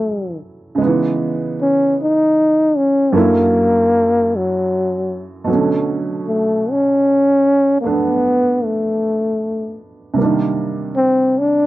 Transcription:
0.00 0.79 A2 soft
0.00 0.79 E3 soft
0.00 0.80 F#3 soft
0.00 0.38 A3 medium
0.00 0.80 B3 soft
0.00 0.80 C#4 soft
0.00 0.81 E4 soft
0.00 0.81 G#4 soft
0.00 0.81 A4 soft
0.75 3.12 C#3 soft
0.75 3.13 G#3 soft
0.82 3.15 B3 soft
0.82 3.16 D#4 soft
0.86 3.17 E3 soft
1.61 1.96 C#4 medium
2.02 2.79 D#4 medium
2.77 3.18 C#4 medium
3.12 5.47 F#2 soft
3.12 5.46 F#3 soft
3.12 5.49 A#3 soft
3.12 5.48 A4 soft
3.17 4.38 A#3 medium
3.17 5.50 D4 soft
3.17 5.50 E4 medium
4.37 5.31 F#3 medium
5.44 10.15 B2 soft
5.44 10.16 F#3 soft
5.50 7.82 A3 soft
5.50 10.19 C#4 soft
5.55 10.20 D3 soft
6.28 6.72 A3 medium
6.71 7.80 C#4 medium
7.81 10.17 A3 soft
7.81 7.91 A#3 soft
7.85 10.18 B3 soft
7.85 8.66 B3 medium
7.85 10.19 D4 soft
8.65 9.79 A3 medium
10.14 11.66 C3 soft
10.14 11.66 G3 soft
10.18 11.66 A#3 soft
10.18 11.66 D4 soft
10.24 11.66 D#3 soft
10.96 11.41 C4 medium
11.39 11.66 D4 medium

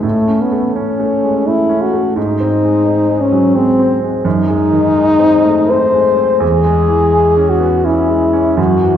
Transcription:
0.03 2.12 A2 soft
0.03 0.43 A3 medium
0.28 0.66 C#4 soft
0.41 0.75 B3 soft
0.52 0.90 A3 soft
0.76 1.48 C#4 medium
0.76 1.14 C#4 soft
1.00 1.37 A3 soft
1.23 1.47 G#3 soft
1.47 1.84 A3 soft
1.47 1.83 E4 medium
1.69 2.07 C#4 soft
1.82 2.16 F#4 medium
1.93 2.16 A3 soft
2.16 4.21 G#2 soft
2.16 3.22 D#4 medium
2.40 2.77 C4 soft
2.63 3.00 G#3 soft
2.86 3.23 C4 soft
3.09 3.46 G#3 soft
3.21 3.57 C#4 medium
3.32 3.55 F#3 soft
3.55 3.93 G#3 soft
3.55 4.01 C4 medium
3.79 4.16 C4 soft
4.03 4.25 G#3 soft
4.25 6.38 F#2 soft
4.25 5.72 D#4 medium
4.48 4.85 G#3 soft
4.71 5.09 D#3 soft
4.95 5.35 G#3 soft
5.19 5.60 C4 soft
5.45 5.70 A3 soft
5.69 6.08 C4 soft
5.69 6.42 C5 medium
5.93 6.32 G#3 soft
6.17 6.41 C4 soft
6.40 8.53 E2 medium
6.40 7.51 G#4 medium
6.65 7.03 G#3 soft
6.88 7.27 E3 soft
7.12 7.51 G#3 soft
7.37 7.75 C#4 soft
7.49 7.87 F#4 medium
7.60 7.84 B3 soft
7.85 8.24 C#4 soft
7.85 8.57 E4 medium
8.08 8.48 G#3 soft
8.33 8.58 C#4 soft
8.57 8.97 F#2 soft
8.57 8.97 F#4 medium
8.82 8.97 E3 soft

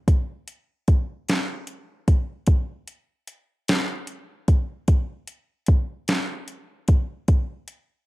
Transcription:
0.08 kick loud
0.08 closed hi-hat medium
0.48 closed hi-hat soft
0.88 kick medium
0.88 closed hi-hat soft
1.29 snare medium
1.29 closed hi-hat medium
1.67 closed hi-hat soft
2.08 kick medium
2.08 closed hi-hat soft
2.47 kick loud
2.47 closed hi-hat medium
2.87 closed hi-hat soft
3.27 closed hi-hat soft
3.68 snare loud
3.68 closed hi-hat medium
4.07 closed hi-hat soft
4.48 kick medium
4.48 closed hi-hat soft
4.88 kick loud
4.88 closed hi-hat medium
5.27 closed hi-hat medium
5.66 kick medium
5.66 closed hi-hat soft
6.08 snare loud
6.08 closed hi-hat medium
6.48 closed hi-hat soft
6.88 kick medium
6.88 closed hi-hat soft
7.28 kick loud
7.28 closed hi-hat medium
7.68 closed hi-hat medium

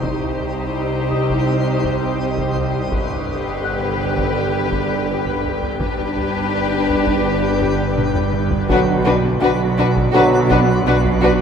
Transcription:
0.01 2.88 C2 medium
0.01 2.88 C3 medium
0.01 2.88 C3 soft
0.01 2.88 G3 medium
0.01 2.74 C4 medium
0.01 2.74 D#4 medium
0.01 2.88 D#4 soft
0.01 2.88 G4 medium
0.01 2.88 C5 medium
0.01 2.88 D#5 medium
0.01 2.88 G5 medium
0.01 taiko medium
0.20 taiko low soft
0.39 taiko low soft
1.11 3.25 D#5 soft
1.11 3.24 D#6 soft
1.11 taiko low soft
1.29 taiko medium
1.84 taiko medium
2.38 taiko medium
2.56 taiko low medium
2.74 taiko low soft
2.91 5.77 G1 medium
2.91 5.80 G1 medium
2.91 5.77 G2 medium
2.91 5.63 D3 medium
2.91 5.77 D3 medium
2.91 5.63 G3 medium
2.91 5.77 B3 medium
2.91 5.77 G4 medium
2.91 5.80 B4 medium
2.91 5.77 B4 medium
2.91 taiko medium
3.10 taiko low soft
3.28 taiko low medium
3.64 5.77 F#5 soft
3.64 5.77 F#6 medium
4.00 taiko low soft
4.18 taiko medium
4.72 taiko medium
5.26 taiko medium
5.44 taiko low medium
5.62 taiko low soft
5.79 8.66 G1 medium
5.79 8.66 G2 medium
5.79 8.66 D3 medium
5.79 8.66 G3 medium
5.79 8.53 B3 medium
5.79 8.53 D4 medium
5.79 8.66 D4 medium
5.79 8.66 G4 medium
5.79 8.66 B4 medium
5.79 8.66 D5 medium
5.79 8.66 G5 medium
5.79 taiko loud
5.98 taiko low soft
6.17 taiko low medium
6.89 taiko low medium
7.07 taiko medium
7.61 taiko medium
7.97 taiko mid medium
8.15 taiko low-mid medium
8.33 taiko mid medium
8.51 taiko low loud
8.68 11.41 B1 medium
8.68 9.34 B1 medium
8.68 9.33 B2 medium
8.68 8.96 D3 medium
8.68 8.95 F#3 medium
8.68 8.96 B3 medium
8.68 8.77 D4 medium
8.68 8.77 F#4 medium
8.68 8.96 F#4 medium
8.68 11.41 B4 medium
8.68 8.79 B4 medium
8.68 11.41 D5 medium
8.68 11.41 F#5 medium
8.68 taiko loud
8.88 taiko low soft
9.04 9.13 D4 medium
9.04 9.12 F#4 medium
9.04 9.15 B4 medium
9.04 taiko low medium
9.41 10.06 B1 medium
9.41 10.06 B2 medium
9.41 9.49 D4 medium
9.41 9.49 F#4 medium
9.41 9.52 B4 medium
9.78 9.86 D4 medium
9.78 9.86 F#4 medium
9.78 9.87 B4 medium
9.78 taiko low medium
9.96 taiko medium
10.13 10.78 B1 loud
10.13 10.78 B2 loud
10.13 10.39 D3 medium
10.13 10.39 F#3 medium
10.13 10.40 B3 medium
10.13 10.23 D4 medium
10.13 10.39 F#4 medium
10.13 10.21 F#4 medium
10.13 10.24 B4 medium
10.50 10.58 D4 medium
10.50 10.58 F#4 medium
10.50 10.59 B4 medium
10.50 taiko medium
10.86 11.41 B1 medium
10.86 11.41 B2 medium
10.86 10.95 D4 medium
10.86 10.95 F#4 medium
10.86 10.96 B4 medium
11.05 taiko medium
11.21 11.31 D4 medium
11.21 11.29 F#4 medium
11.21 11.32 B4 medium
11.21 taiko low medium

